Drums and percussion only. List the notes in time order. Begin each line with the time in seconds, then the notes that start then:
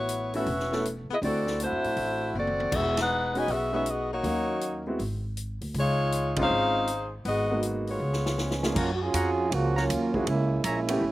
0.09 closed hi-hat
0.34 open hi-hat
0.46 kick, open hi-hat
0.60 snare
0.72 snare
0.85 closed hi-hat
1.22 kick, open hi-hat
1.47 snare
1.60 closed hi-hat
1.84 open hi-hat
1.97 kick, open hi-hat
2.35 high tom
2.47 high tom
2.60 high tom
2.72 kick, crash
2.97 snare, ride
3.35 open hi-hat
3.48 kick, open hi-hat
3.86 closed hi-hat
4.24 kick, open hi-hat
4.61 closed hi-hat
4.99 kick, open hi-hat
5.37 closed hi-hat
5.61 open hi-hat
5.74 kick, open hi-hat
6.12 closed hi-hat
6.36 kick, ride
6.87 closed hi-hat
7.25 kick, open hi-hat
7.63 closed hi-hat
7.87 open hi-hat
8.13 snare
8.26 snare
8.38 snare
8.51 snare
8.63 snare
8.76 kick, crash
9.14 kick, hi-hat pedal, ride
9.52 kick, ride
9.77 snare
9.89 kick, hi-hat pedal, ride
10.14 kick
10.27 kick, ride
10.64 kick, hi-hat pedal, ride
10.89 ride
11.02 kick